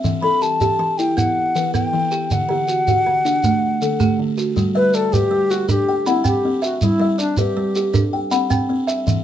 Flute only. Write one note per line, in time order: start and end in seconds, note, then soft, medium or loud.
0.22 0.44 B5 loud
0.42 0.99 A5 loud
0.98 1.19 G5 loud
1.17 1.74 F#5 medium
1.74 2.33 G5 medium
2.32 4.20 F#5 medium
4.76 4.96 B4 loud
4.95 5.14 A4 loud
5.13 5.52 G4 medium
5.51 5.69 F#4 medium
5.70 6.09 G4 medium
6.07 6.26 E4 medium
6.27 6.61 G4 medium
6.64 6.84 F#4 medium
6.83 7.19 E4 medium
7.20 7.39 D4 medium
7.38 8.13 G4 medium